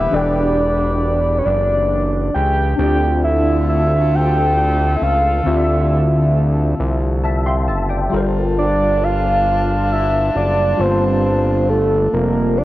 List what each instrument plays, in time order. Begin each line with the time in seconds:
Already playing: horn section B3 G4 B4, tine electric piano G4, soft synth lead E5
0.10 analog synth bass E1, tine electric piano E3 D4 G4, soft synth lead D5
0.14 tine electric piano A4 G5
1.39 soft synth lead C#5
1.45 analog synth bass F#1, soft synth lead D5
2.34 analog synth bass C#2, soft synth lead G5
2.76 analog synth bass D2, horn section A3 F4 A4, tine electric piano C4 D4 E4, soft synth lead G5
2.81 tine electric piano G4 D5
2.86 tine electric piano F4
3.24 soft synth lead E5
3.69 soft synth lead E5
4.15 soft synth lead G5
4.58 soft synth lead G5
4.96 soft synth lead E5
5.02 analog synth bass C#2, soft synth lead F5
5.43 analog synth bass D2, tine electric piano D3 C4, soft synth lead E5
5.47 tine electric piano F4 G4 D5
5.57 tine electric piano E5
6.80 analog synth bass C2
7.24 tine electric piano E5 A5
7.46 tine electric piano F5 G5 C6
7.68 analog synth bass F#1, tine electric piano E5 A5
7.89 tine electric piano D5 G5
8.09 analog synth bass G1, tine electric piano G3 F4 A4, horn section D4 F4 A5
8.14 tine electric piano A#4 C5
8.58 soft synth lead D5
9.04 soft synth lead F5
9.92 soft synth lead E5
10.35 analog synth bass F#1, soft synth lead D5
10.76 analog synth bass G1, tine electric piano G3 F4 A5
10.80 tine electric piano A#3 C5, soft synth lead C5
11.70 soft synth lead A4
12.13 analog synth bass F1, soft synth lead A#4
12.57 soft synth lead D5, tine electric piano F5